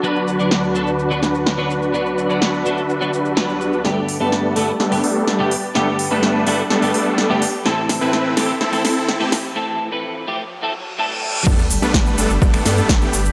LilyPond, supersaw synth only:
\new Staff \with { instrumentName = "Supersaw synth" } { \time 4/4 \key g \major \tempo 4 = 126 <d' fis' b'>1~ | <d' fis' b'>1 | <g a b d' a'>16 r8 <g a b d' b'>8. <g a b d' a'>16 r16 <g a b d' a'>8 <g a b d' a'>8. <g a b d' g'>16 r8 | <g a b d' a'>16 r8 <g a b d' b'>8. <g a b d' a'>16 r16 <g a b d' a'>8 <g a b d' a'>8. <g a b d' g'>16 r8 |
<c' e' a'>16 r8 <c' e' b'>8. <c' e' a'>16 r16 <c' e' a'>8 <c' e' a'>8. <c' e' g'>16 r8 | r1 | <g a b d' a'>16 r8 <g a b d' b'>8. <g a b d' a'>16 r16 <g a b d' a'>8 <g a b d' a'>8. <g a b d' g'>16 r8 | }